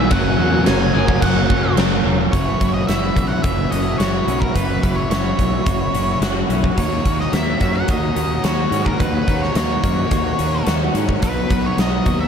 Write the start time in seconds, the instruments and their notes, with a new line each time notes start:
Already playing: overdriven electric guitar E3, clean electric guitar F#3 B3 E4 G#4, analog synth pad F#4 G#5, lead electric guitar E5
0.00 distorted electric guitar B2
0.10 fingered electric bass F#1, overdriven electric guitar F#2 C#3 F#3 A#3 C#4 F#4, analog synth pad A#4 C#5, lead electric guitar F#5, kick, crash
0.37 fingered electric bass E2, distorted electric guitar F#2 C#3, overdriven electric guitar F#3 A#3 C#4 F#4
0.65 fingered electric bass F#1, overdriven electric guitar F#2 C#3 F#3 A#3 C#4 F#4, lead electric guitar G#5, snare, crash
0.80 overdriven electric guitar F#3 A#3 C#4 F#4
0.94 fingered electric bass F#1, overdriven electric guitar F#2 C#3 F#3, clean electric guitar G#4, lead electric guitar G#5, muted overdriven electric guitar stroke, muted distorted electric guitar stroke
1.07 distorted electric guitar C#3, overdriven electric guitar F#3 A#3 C#4 F#4, kick
1.22 fingered electric bass F#1, clean electric guitar A#3, lead electric guitar F#5, kick, crash
1.35 distorted electric guitar C#3, overdriven electric guitar F#3 A#3 C#4 F#4
1.49 fingered electric bass F#2, distorted electric guitar F#2 C#3, overdriven electric guitar F#3 A#3 C#4 F#4, kick
1.63 overdriven electric guitar F#3 A#3 C#4 F#4
1.76 fingered electric bass F#1, overdriven electric guitar F#2 C#3 F#3 A#3 C#4 F#4, snare, crash
1.90 distorted electric guitar C#3, overdriven electric guitar F#3 A#3 C#4 F#4
2.04 fingered electric bass E1, distorted electric guitar F#2 C#3, overdriven electric guitar F#3 A#3 C#4 F#4
2.08 distorted electric guitar F#3
2.19 distorted electric guitar C#3 F#3
2.31 fingered electric bass F#1, overdriven electric guitar F#2 C#3 E3 A#3 C#4 F#4, distorted electric guitar F#3, analog synth pad F#4 C#5 E5 B5, lead electric guitar C#5, kick, closed hi-hat
2.60 fingered electric bass F#1, distorted electric guitar C#3 F#3, overdriven electric guitar E3 A#3 C#4 F#4, kick, closed hi-hat
2.74 lead electric guitar D#5
2.87 fingered electric bass F#1, distorted electric guitar F#2 C#3 F#3, overdriven electric guitar E3 A#3 C#4 F#4, lead electric guitar E5, snare, closed hi-hat
3.15 fingered electric bass B1, overdriven electric guitar E3 A#3 C#4 F#4, kick, closed hi-hat
3.28 lead electric guitar F#5
3.42 fingered electric bass F#1, overdriven electric guitar F#2 C#3 E3 A#3 C#4 F#4, lead electric guitar E5, kick, closed hi-hat
3.70 fingered electric bass F#1, overdriven electric guitar E3 A#3 C#4 F#4, distorted electric guitar F#3, lead electric guitar D#5, closed hi-hat
3.74 distorted electric guitar C#3
3.98 fingered electric bass F#1, distorted electric guitar F#2 C#3 F#3, overdriven electric guitar E3 A#3 C#4 F#4, lead electric guitar C#5, snare, closed hi-hat
4.26 fingered electric bass B1, distorted electric guitar C#3 F#3, overdriven electric guitar E3 A#3 C#4 F#4, closed hi-hat
4.40 lead electric guitar A#4, kick
4.54 fingered electric bass F#1, overdriven electric guitar F#2 C#3 E3 A#3 C#4 F#4, distorted electric guitar F#3, lead electric guitar B4, kick, closed hi-hat
4.82 fingered electric bass F#1, distorted electric guitar C#3 F#3, overdriven electric guitar E3 A#3 C#4 F#4, kick, closed hi-hat
4.96 lead electric guitar C#5
5.09 fingered electric bass F#1, distorted electric guitar F#2 C#3 F#3, overdriven electric guitar E3 A#3 C#4 F#4, lead electric guitar C#5, snare, closed hi-hat
5.37 fingered electric bass B1, overdriven electric guitar E3 A#3 C#4 F#4, kick, closed hi-hat
5.65 fingered electric bass F#1, overdriven electric guitar F#2 C#3 E3 A#3 C#4 F#4, kick, closed hi-hat
5.93 fingered electric bass F#1, distorted electric guitar C#3 F#3, overdriven electric guitar E3 A#3 C#4 F#4, closed hi-hat
6.20 fingered electric bass F#1, distorted electric guitar F#2 C#3 F#3, overdriven electric guitar E3 A#3 C#4 F#4, snare, closed hi-hat
6.48 fingered electric bass B1, distorted electric guitar C#3 F#3, overdriven electric guitar E3 A#3 C#4 F#4, closed hi-hat
6.64 kick
6.76 fingered electric bass D#2, overdriven electric guitar D#3 A#3 D#4 F#4, lead electric guitar C#5, analog synth pad F#5 A#5, kick, closed hi-hat
7.03 fingered electric bass D#2, overdriven electric guitar A#3 D#4 F#4, clean electric guitar C#4, kick, closed hi-hat
7.20 lead electric guitar D#5, snare
7.31 fingered electric bass D#2, overdriven electric guitar D#3 A#3 D#4 F#4, lead electric guitar E5, snare, closed hi-hat
7.60 fingered electric bass F#2, overdriven electric guitar A#3 D#4 F#4, kick, closed hi-hat
7.76 lead electric guitar F#5
7.87 fingered electric bass D#2, overdriven electric guitar D#3 A#3 D#4 F#4, lead electric guitar D#5, kick, closed hi-hat
8.16 fingered electric bass D#2, overdriven electric guitar A#3 D#4 F#4, clean electric guitar C#4, closed hi-hat
8.43 fingered electric bass D#2, overdriven electric guitar D#3 A#3 D#4 F#4, lead electric guitar C#5, snare, closed hi-hat
8.71 fingered electric bass G#2, overdriven electric guitar A#3 D#4 F#4, clean electric guitar C#4, closed hi-hat
8.86 lead electric guitar A#4, kick
8.98 fingered electric bass D#2, overdriven electric guitar D#3 A#3 D#4 F#4, lead electric guitar B4, kick, closed hi-hat
9.26 fingered electric bass D#2, overdriven electric guitar A#3 D#4 F#4, clean electric guitar C#4, kick, closed hi-hat
9.42 lead electric guitar C#5, snare
9.54 fingered electric bass D#2, overdriven electric guitar D#3 A#3 D#4 F#4, lead electric guitar C#5, snare, closed hi-hat
9.82 fingered electric bass F#2, overdriven electric guitar A#3 D#4 F#4, kick, closed hi-hat
10.10 fingered electric bass D#2, overdriven electric guitar D#3 A#3 D#4 F#4, kick, closed hi-hat
10.38 fingered electric bass D#2, overdriven electric guitar A#3 D#4 F#4, clean electric guitar C#4, closed hi-hat
10.66 fingered electric bass D#2, overdriven electric guitar D#3 A#3 D#4 F#4, snare, closed hi-hat
10.94 fingered electric bass G#2, overdriven electric guitar A#3 D#4 F#4, clean electric guitar C#4, closed hi-hat
11.09 kick
11.21 fingered electric bass B1, overdriven electric guitar B2 F#3 B3 D#4 F#4, analog synth pad B3 F#4 A#5, lead electric guitar B4, kick, closed hi-hat
11.49 fingered electric bass B1, distorted electric guitar F#3, overdriven electric guitar B3 D#4 F#4, kick, closed hi-hat
11.66 lead electric guitar C#5
11.77 fingered electric bass B1, distorted electric guitar B2, overdriven electric guitar F#3 B3 D#4 F#4, lead electric guitar D#5, snare, closed hi-hat
12.05 fingered electric bass D#2, clean electric guitar F#3, overdriven electric guitar B3 D#4 F#4, kick, closed hi-hat
12.20 lead electric guitar E5